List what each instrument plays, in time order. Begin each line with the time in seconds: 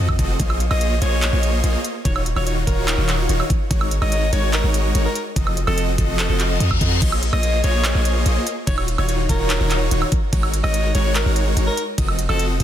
0.00 808-style bass F2, supersaw synth F3 C4 F#4 A4 D#5, digital synth lead D#5
0.09 kick, high woodblock
0.19 808-style bass F1, supersaw synth F3 C4 F#4 A4 D#5, digital synth lead D#5, kick, closed hi-hat
0.40 808-style bass A#1, supersaw synth A#3 F4 G#4 C5 C#5, digital synth lead D#5, kick, closed hi-hat
0.50 high woodblock
0.60 closed hi-hat
0.71 808-style bass A#1, supersaw synth A#3 F4 G#4 C5 C#5 D#5, digital synth lead D#5, alto saxophone D#5, high woodblock
0.81 closed hi-hat
1.02 808-style bass A#1, supersaw synth A#3 F4 G#4 C5 C#5 D#5, alto saxophone C#5, digital synth lead D#5, closed hi-hat
1.22 clap, closed hi-hat
1.33 808-style bass A#1, supersaw synth A#3 F4 G#4 C5 C#5 D#5, digital synth lead D#5
1.43 closed hi-hat
1.64 808-style bass A#1, supersaw synth A#3 F4 G#4 C5 C#5 D#5, digital synth lead D#5, closed hi-hat
1.85 closed hi-hat
2.05 808-style bass D#1, supersaw synth D#3 D#4 F4 F#4 C#5, alto saxophone C#5, digital synth lead C#5, kick, closed hi-hat
2.16 alto saxophone C#5, high woodblock
2.26 closed hi-hat
2.36 808-style bass D#1, supersaw synth D#3 D#4 F4 F#4 C#5, digital synth lead C#5, alto saxophone C#5, high woodblock
2.46 alto saxophone C#5, closed hi-hat
2.67 808-style bass D#1, supersaw synth D#3 D#4 F4 F#4 C#5, alto saxophone A#4, digital synth lead C#5, kick, closed hi-hat
2.88 clap, closed hi-hat
2.98 808-style bass D#1, supersaw synth D#3 D#4 F4 F#4 C#5, digital synth lead C#5
3.09 clap, closed hi-hat
3.29 808-style bass D#1, supersaw synth D#3 D#4 F4 F#4 C#5, digital synth lead C#5, closed hi-hat
3.40 high woodblock
3.50 kick, closed hi-hat
3.71 808-style bass G#1, supersaw synth G#3 D#4 F#4 A#4 C#5, digital synth lead C#5, kick, closed hi-hat
3.81 high woodblock
3.91 closed hi-hat
4.02 808-style bass G#1, supersaw synth G#3 D#4 F#4 A#4 C#5, digital synth lead C#5, alto saxophone D#5, high woodblock
4.12 closed hi-hat
4.33 808-style bass G#1, supersaw synth G#3 D#4 F#4 A#4 C#5, alto saxophone C#5, digital synth lead C#5, closed hi-hat
4.53 alto saxophone A#4, clap, closed hi-hat
4.64 808-style bass G#1, supersaw synth G#3 D#4 F#4 A#4 C#5, digital synth lead C#5
4.74 closed hi-hat
4.95 808-style bass G#1, supersaw synth G#3 D#4 F#4 A#4 C#5, digital synth lead C#5, closed hi-hat
5.05 alto saxophone A#4
5.15 closed hi-hat
5.36 808-style bass F1, supersaw synth F3 C4 F#4 A4 D#5, digital synth lead D#5, kick, closed hi-hat
5.47 high woodblock
5.57 closed hi-hat
5.67 808-style bass F1, supersaw synth F3 C4 F#4 A4 D#5, alto saxophone A4, digital synth lead D#5, high woodblock
5.78 closed hi-hat
5.98 808-style bass F1, supersaw synth F3 C4 F#4 A4 D#5, digital synth lead D#5, kick, closed hi-hat
6.19 alto saxophone A4, clap, closed hi-hat, reverse cymbal
6.29 808-style bass F1, supersaw synth F3 C4 F#4 A4 D#5, alto saxophone A4, digital synth lead D#5
6.40 clap, closed hi-hat
6.60 808-style bass F2, supersaw synth F3 C4 F#4 A4 D#5, digital synth lead D#5, closed hi-hat
6.71 kick, high woodblock
6.81 808-style bass F2, supersaw synth F3 C4 F#4 A4 D#5, digital synth lead D#5, kick, closed hi-hat
7.02 808-style bass A#1, supersaw synth A#3 F4 G#4 C5 C#5 D#5, digital synth lead D#5, kick, closed hi-hat, crash
7.12 high woodblock
7.23 closed hi-hat
7.33 808-style bass A#1, supersaw synth A#3 F4 G#4 C5 C#5 D#5, alto saxophone D#5, digital synth lead D#5, high woodblock
7.43 closed hi-hat
7.64 808-style bass A#1, supersaw synth A#3 F4 G#4 C5 C#5 D#5, alto saxophone C#5, digital synth lead D#5, closed hi-hat
7.85 clap, closed hi-hat
7.95 808-style bass A#1, supersaw synth A#3 F4 G#4 C5 C#5 D#5, digital synth lead D#5
8.05 closed hi-hat
8.26 808-style bass A#1, supersaw synth A#3 F4 G#4 C5 C#5 D#5, digital synth lead D#5, closed hi-hat
8.47 closed hi-hat
8.67 808-style bass D#1, supersaw synth D#3 D#4 F4 F#4 C#5, alto saxophone C#5, digital synth lead C#5, kick, closed hi-hat, crash
8.78 alto saxophone C#5, high woodblock
8.88 closed hi-hat
8.98 808-style bass D#1, supersaw synth D#3 D#4 F4 F#4 C#5, alto saxophone C#5, digital synth lead C#5, high woodblock
9.09 alto saxophone C#5, closed hi-hat
9.29 808-style bass D#1, supersaw synth D#3 D#4 F4 F#4 C#5, alto saxophone A#4, digital synth lead C#5, kick, closed hi-hat
9.50 clap, closed hi-hat
9.60 808-style bass D#1, supersaw synth D#3 D#4 F4 F#4 C#5, digital synth lead C#5
9.71 clap, closed hi-hat
9.91 808-style bass D#1, supersaw synth D#3 D#4 F4 F#4 C#5, digital synth lead C#5, closed hi-hat
10.02 high woodblock
10.12 kick, closed hi-hat
10.33 808-style bass G#1, supersaw synth G#3 D#4 F#4 A#4 C#5, digital synth lead C#5, kick, closed hi-hat, crash
10.43 high woodblock
10.54 closed hi-hat
10.64 808-style bass G#1, supersaw synth G#3 D#4 F#4 A#4 C#5, digital synth lead C#5, alto saxophone D#5, high woodblock
10.74 closed hi-hat
10.95 808-style bass G#1, supersaw synth G#3 D#4 F#4 A#4 C#5, alto saxophone C#5, digital synth lead C#5, closed hi-hat
11.15 alto saxophone A#4, clap, closed hi-hat
11.26 808-style bass G#1, supersaw synth G#3 D#4 F#4 A#4 C#5, digital synth lead C#5
11.36 closed hi-hat
11.57 808-style bass G#1, supersaw synth G#3 D#4 F#4 A#4 C#5, digital synth lead C#5, closed hi-hat
11.67 alto saxophone A#4
11.77 closed hi-hat
11.98 808-style bass F1, supersaw synth F3 C4 F#4 A4 D#5, digital synth lead D#5, kick, closed hi-hat, crash
12.08 high woodblock
12.19 closed hi-hat
12.29 808-style bass F1, supersaw synth F3 C4 F#4 A4 D#5, alto saxophone A4, digital synth lead D#5, high woodblock
12.39 closed hi-hat
12.60 808-style bass F1, supersaw synth F3 C4 F#4 A4 D#5, digital synth lead D#5, kick, closed hi-hat